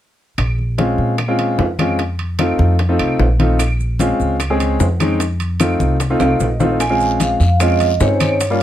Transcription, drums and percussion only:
0.38 high bongo medium
0.38 high conga soft
0.38 high timbale medium
0.38 claves medium
0.58 high conga soft
0.78 high bongo soft
0.78 high conga medium
0.78 high timbale medium
0.98 high bongo soft
0.98 high conga soft
1.18 high bongo medium
1.18 high conga soft
1.18 high timbale medium
1.18 claves medium
1.39 high bongo soft
1.39 high conga soft
1.39 high timbale medium
1.59 high bongo medium
1.59 low bongo medium
1.59 high conga soft
1.59 low timbale medium
1.79 high bongo soft
1.79 high conga medium
1.79 high timbale medium
1.79 claves medium
1.99 high bongo medium
1.99 high conga soft
1.99 high timbale medium
2.19 high conga soft
2.19 high timbale soft
2.39 high bongo soft
2.39 high conga medium
2.39 high timbale medium
2.39 claves medium
2.59 high bongo soft
2.59 high conga medium
2.79 high bongo medium
2.79 high conga soft
2.79 high timbale medium
2.99 high conga soft
2.99 high timbale medium
2.99 claves medium
3.20 high bongo medium
3.20 low bongo medium
3.20 high conga soft
3.20 low timbale medium
3.39 high bongo soft
3.39 high conga medium
3.39 high timbale medium
3.59 high bongo medium
3.59 high conga soft
3.59 high timbale medium
3.59 claves medium
3.59 maracas medium
3.79 high conga soft
3.79 maracas soft
3.99 high bongo soft
3.99 high conga medium
3.99 high timbale medium
3.99 maracas medium
4.20 high bongo soft
4.20 high conga soft
4.20 maracas soft
4.40 high bongo medium
4.40 high conga soft
4.40 high timbale medium
4.40 claves medium
4.40 maracas medium
4.60 high bongo soft
4.60 high conga soft
4.60 high timbale medium
4.60 maracas soft
4.80 high bongo medium
4.80 low bongo medium
4.80 high conga soft
4.80 low timbale medium
4.80 maracas medium
5.00 high bongo soft
5.00 high conga medium
5.00 high timbale medium
5.00 claves medium
5.00 maracas soft
5.20 high bongo medium
5.20 high conga soft
5.20 high timbale medium
5.20 maracas medium
5.40 high conga soft
5.40 high timbale medium
5.40 maracas soft
5.60 high bongo medium
5.60 high conga medium
5.60 high timbale medium
5.60 claves medium
5.60 maracas medium
5.80 high bongo soft
5.80 high conga medium
5.80 maracas soft
6.00 high bongo medium
6.00 high conga soft
6.00 high timbale medium
6.00 maracas medium
6.20 high bongo medium
6.20 high conga soft
6.20 high timbale medium
6.20 claves medium
6.20 maracas soft
6.40 low bongo medium
6.40 high conga soft
6.40 low timbale medium
6.40 maracas medium
6.60 low bongo medium
6.60 high conga medium
6.60 low timbale medium
6.60 maracas soft
6.80 high bongo medium
6.80 high conga soft
6.80 high timbale medium
6.80 long guiro medium
6.80 claves medium
6.80 maracas medium
7.00 high conga soft
7.00 maracas soft
7.20 high bongo soft
7.20 high conga medium
7.20 high timbale medium
7.20 short guiro medium
7.20 maracas medium
7.40 high bongo soft
7.40 high conga soft
7.40 short guiro medium
7.40 maracas soft
7.60 high bongo medium
7.60 high conga soft
7.60 high timbale medium
7.60 long guiro medium
7.60 claves medium
7.60 maracas medium
7.80 high bongo soft
7.80 high conga soft
7.80 high timbale medium
7.80 maracas soft
8.00 high bongo medium
8.00 low bongo medium
8.00 high conga soft
8.00 low timbale medium
8.00 short guiro medium
8.00 maracas medium
8.20 high bongo soft
8.20 high conga medium
8.20 high timbale medium
8.20 short guiro medium
8.20 claves medium
8.20 maracas soft
8.40 high bongo medium
8.40 high conga soft
8.40 high timbale medium
8.40 long guiro medium
8.40 maracas medium

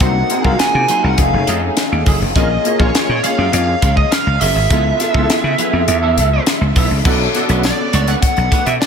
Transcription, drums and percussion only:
0.00 kick loud
0.00 closed hi-hat medium
0.30 closed hi-hat medium
0.45 kick medium
0.59 snare loud
0.59 closed hi-hat medium
0.88 closed hi-hat medium
1.18 kick medium
1.18 closed hi-hat medium
1.47 closed hi-hat medium
1.77 snare loud
1.77 closed hi-hat medium
2.06 kick medium
2.06 open hi-hat medium
2.36 kick loud
2.36 closed hi-hat medium
2.65 closed hi-hat medium
2.80 kick medium
2.95 snare loud
2.95 closed hi-hat medium
3.24 closed hi-hat medium
3.53 closed hi-hat medium
3.82 kick medium
3.82 closed hi-hat medium
3.97 kick medium
4.12 snare loud
4.12 closed hi-hat medium
4.41 open hi-hat medium
4.70 kick loud
4.70 closed hi-hat medium
5.00 snare soft
5.00 closed hi-hat medium
5.14 kick medium
5.30 snare loud
5.30 closed hi-hat medium
5.58 closed hi-hat medium
5.88 closed hi-hat medium
6.18 closed hi-hat medium
6.46 snare loud
6.46 closed hi-hat medium
6.76 kick medium
6.76 open hi-hat medium
7.05 kick loud
7.05 crash medium
7.35 snare soft
7.35 closed hi-hat medium
7.49 closed hi-hat soft
7.63 snare loud
7.63 tambourine medium
7.93 closed hi-hat medium
8.08 closed hi-hat soft
8.22 kick medium
8.22 closed hi-hat medium
8.37 closed hi-hat soft
8.52 kick medium
8.52 closed hi-hat medium
8.66 closed hi-hat soft
8.82 snare loud
8.82 tambourine medium

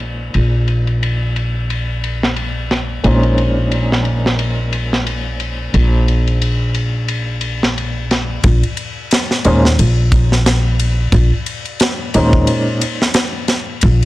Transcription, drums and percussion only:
0.34 ride medium
0.68 ride medium
0.87 ride soft
1.03 ride medium
1.36 ride medium
1.70 ride medium
2.04 ride medium
2.23 snare soft
2.36 ride medium
2.71 snare soft
2.71 ride medium
3.04 ride medium
3.23 ride soft
3.38 ride medium
3.72 ride medium
3.92 snare soft
4.05 ride medium
4.26 snare soft
4.39 ride medium
4.73 ride medium
4.93 snare soft
5.07 ride medium
5.40 ride medium
5.74 ride medium
6.08 ride medium
6.27 ride soft
6.42 ride medium
6.74 ride medium
7.08 ride medium
7.41 ride medium
7.63 snare soft
7.78 ride medium
8.11 snare soft
8.11 ride medium
8.44 kick loud
8.44 ride medium
8.63 ride soft
8.77 ride medium
9.11 snare loud
9.11 ride medium
9.31 snare soft
9.44 ride medium
9.65 snare soft
9.79 ride medium
10.12 kick loud
10.12 ride medium
10.32 snare soft
10.46 snare loud
10.46 ride medium
10.79 ride medium
11.12 kick loud
11.12 ride medium
11.46 ride medium
11.65 ride soft
11.80 snare loud
11.80 ride medium
12.14 ride medium
12.33 kick medium
12.47 ride loud
12.81 ride medium
13.02 snare medium
13.14 snare loud
13.14 ride loud
13.48 snare soft
13.48 ride medium
13.81 kick loud
13.81 ride medium

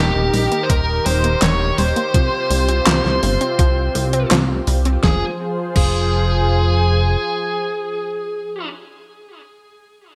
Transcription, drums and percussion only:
0.34 open hi-hat medium
0.52 closed hi-hat medium
0.70 kick loud
0.70 closed hi-hat medium
1.06 open hi-hat medium
1.24 closed hi-hat medium
1.42 snare loud
1.42 clap loud
1.42 closed hi-hat medium
1.78 open hi-hat medium
1.96 closed hi-hat medium
2.14 kick loud
2.14 closed hi-hat loud
2.51 open hi-hat medium
2.69 closed hi-hat medium
2.87 snare loud
2.87 clap medium
2.87 closed hi-hat medium
3.05 snare soft
3.23 open hi-hat medium
3.41 closed hi-hat medium
3.59 kick loud
3.59 closed hi-hat medium
3.95 open hi-hat medium
4.13 closed hi-hat medium
4.31 snare loud
4.31 clap loud
4.31 closed hi-hat loud
4.67 open hi-hat medium
4.85 closed hi-hat medium
5.03 kick loud
5.03 snare medium
5.76 kick loud
5.76 crash medium

